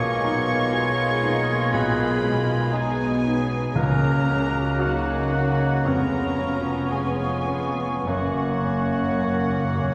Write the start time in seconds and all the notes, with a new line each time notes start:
Already playing: B1 B2 D#3 G#3 A#3 B3 F4 G#4 C#5 D#5 C#6 G#6
0.23 F#3 D#4
0.72 G#3 G#4
1.24 A#3 D#4
1.73 B1 D#3 G#3 B3 B4 B5
2.23 G#3
2.71 G#3 B3 D#4 G#4 G#5
3.23 C#4 D#4
3.75 C#2 C#3 F#3 A#3 C#4 A#4 C#5 A#5 F#6
4.26 G#3 C#4
4.79 F#3 A#3 C#4 D#4 F#4 F#5
5.31 C#4 F#4
5.85 F1 F2 G#3 B3 C#4 F4 A#4 A#5 C#6
6.38 F#3 C#4
6.91 G#3 B3 C#4 G#4 G#5
7.48 C#4
8.07 F#1 F#2 A#3 C#4 F#4 C#5 F#5
8.16 F#2
8.24 F#2
8.42 F#2
8.50 F#2
8.58 F#2
8.66 F#2 C#4
8.75 F#2
8.83 F#2
8.92 F#2
9.00 F#2
9.16 F#2
9.24 F#2 A#4
9.33 F#2
9.41 F#2
9.49 F#2
9.57 F#2
9.65 F#2
9.73 F#2
9.81 F#2 C#4
9.90 F#2